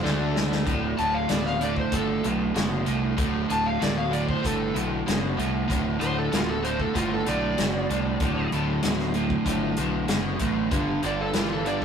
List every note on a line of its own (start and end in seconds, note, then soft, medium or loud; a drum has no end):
0.02 0.63 D2 medium
0.02 0.65 D3 medium
0.02 0.66 A3 medium
0.02 0.65 D4 medium
0.02 0.66 D4 loud
0.02 0.64 F#4 medium
0.02 0.64 A4 medium
0.02 0.64 D5 medium
0.02 snare medium
0.36 snare loud
0.52 snare medium
0.65 0.93 D1 medium
0.65 0.95 D2 medium
0.65 0.95 A2 medium
0.65 3.15 D4 medium
0.65 3.15 F#4 medium
0.65 3.14 A4 medium
0.65 3.14 D5 medium
0.65 kick loud
0.65 closed hi-hat medium
0.97 1.25 D1 medium
0.97 1.26 D2 medium
0.97 1.26 A2 medium
0.97 1.14 A5 medium
0.97 closed hi-hat medium
1.14 1.29 F5 medium
1.29 1.84 D1 medium
1.29 1.57 D2 medium
1.29 1.57 B2 medium
1.29 1.46 D5 medium
1.29 snare loud
1.29 closed hi-hat medium
1.46 1.61 F5 medium
1.46 snare soft
1.60 1.89 D2 medium
1.60 1.90 A2 medium
1.60 1.77 D5 loud
1.60 closed hi-hat medium
1.76 1.93 C5 medium
1.76 kick medium
1.92 2.19 G1 medium
1.92 2.20 D2 medium
1.92 2.21 A2 medium
1.92 2.24 A4 medium
1.92 kick medium
1.92 closed hi-hat medium
2.24 2.51 B1 medium
2.24 2.52 D2 medium
2.24 2.52 A2 medium
2.24 closed hi-hat medium
2.54 2.82 F#1 medium
2.54 2.83 D2 medium
2.54 2.83 B2 medium
2.54 snare loud
2.54 closed hi-hat medium
2.85 3.13 C2 medium
2.85 3.14 D2 medium
2.85 3.15 A2 medium
2.85 closed hi-hat medium
3.17 3.45 D1 medium
3.17 3.46 D2 medium
3.17 3.46 A2 medium
3.17 5.67 D4 medium
3.17 5.67 F#4 medium
3.17 5.67 A4 medium
3.17 kick loud
3.17 closed hi-hat medium
3.48 3.77 D1 medium
3.48 3.77 D2 medium
3.48 3.77 A2 medium
3.48 3.66 A5 loud
3.48 closed hi-hat medium
3.66 3.81 F5 medium
3.80 4.34 D1 medium
3.80 4.09 D2 medium
3.80 4.09 B2 medium
3.80 3.97 D5 medium
3.80 snare loud
3.80 closed hi-hat medium
3.97 4.12 F5 medium
4.11 4.40 D2 medium
4.11 4.40 A2 medium
4.11 4.28 D5 medium
4.11 closed hi-hat medium
4.29 4.44 C5 medium
4.29 kick medium
4.42 4.71 G1 medium
4.42 4.71 D2 medium
4.42 4.71 A2 medium
4.42 kick medium
4.42 closed hi-hat medium
4.46 4.75 A4 medium
4.74 5.02 B1 medium
4.74 5.03 D2 medium
4.74 5.03 A2 medium
4.74 closed hi-hat medium
5.06 5.34 F#1 medium
5.06 5.35 D2 medium
5.06 5.35 B2 medium
5.06 snare loud
5.06 closed hi-hat medium
5.37 5.65 C2 medium
5.37 5.66 D2 medium
5.37 5.66 A2 medium
5.37 closed hi-hat medium
5.68 5.96 D1 medium
5.68 5.97 D2 medium
5.68 5.97 A2 medium
5.68 8.19 A3 medium
5.68 8.18 D4 medium
5.68 kick loud
5.68 closed hi-hat medium
5.99 6.28 D1 medium
5.99 6.28 D2 medium
5.99 6.29 A2 medium
5.99 6.16 C5 loud
5.99 closed hi-hat medium
6.19 6.33 A4 medium
6.31 6.86 D1 medium
6.31 6.60 D2 medium
6.31 6.60 B2 medium
6.31 6.49 F4 medium
6.31 snare loud
6.31 closed hi-hat medium
6.49 6.64 A4 medium
6.63 6.91 D2 medium
6.63 6.91 A2 medium
6.63 6.79 C5 medium
6.63 closed hi-hat medium
6.80 6.95 A4 medium
6.80 kick medium
6.94 7.22 G1 medium
6.94 7.23 D2 medium
6.94 7.23 A2 medium
6.94 7.11 F4 medium
6.94 kick medium
6.94 closed hi-hat medium
7.14 7.27 A4 medium
7.26 7.54 B1 medium
7.26 7.54 D2 medium
7.26 7.55 A2 medium
7.26 8.50 D5 medium
7.26 closed hi-hat medium
7.58 7.85 F#1 medium
7.58 7.86 D2 medium
7.58 7.86 B2 medium
7.58 snare loud
7.58 closed hi-hat medium
7.89 8.16 C2 medium
7.89 8.18 D2 medium
7.89 8.18 A2 medium
7.89 closed hi-hat medium
8.20 8.47 D1 medium
8.20 8.49 D2 medium
8.20 8.49 A2 medium
8.20 10.70 F#3 medium
8.20 10.70 A3 medium
8.20 10.69 D4 medium
8.20 kick loud
8.20 closed hi-hat medium
8.52 8.79 D1 medium
8.52 8.81 D2 medium
8.52 8.81 A2 medium
8.52 closed hi-hat medium
8.82 9.36 D1 medium
8.82 9.12 D2 medium
8.82 9.12 B2 medium
8.82 snare medium
8.82 closed hi-hat medium
8.99 snare soft
9.14 9.43 D2 medium
9.14 9.43 A2 medium
9.14 closed hi-hat medium
9.30 kick medium
9.45 9.73 G1 medium
9.45 9.74 D2 medium
9.45 9.74 A2 medium
9.45 kick medium
9.45 closed hi-hat medium
9.76 10.04 B1 medium
9.76 10.06 D2 medium
9.76 10.06 A2 medium
9.76 closed hi-hat medium
10.08 10.35 F#1 medium
10.08 10.37 D2 medium
10.08 10.37 B2 medium
10.08 snare loud
10.08 closed hi-hat medium
10.39 10.67 A1 medium
10.39 10.68 D2 medium
10.39 10.69 A2 medium
10.39 kick medium
10.39 closed hi-hat medium
10.71 10.98 G1 medium
10.71 11.00 G2 medium
10.71 11.00 D3 medium
10.71 11.85 B3 medium
10.71 11.85 D4 medium
10.71 11.85 G4 medium
10.71 11.85 B4 medium
10.71 kick loud
10.71 closed hi-hat medium
11.02 11.30 G1 medium
11.02 11.31 G2 medium
11.02 11.32 D3 medium
11.02 11.20 D5 medium
11.02 closed hi-hat medium
11.21 11.36 A4 medium
11.33 11.85 G1 medium
11.33 11.62 G2 medium
11.33 11.63 E3 medium
11.33 11.51 F4 medium
11.33 snare loud
11.33 closed hi-hat medium
11.53 11.67 A4 medium
11.65 11.85 G2 medium
11.65 11.85 D3 medium
11.65 11.82 D5 medium
11.65 closed hi-hat medium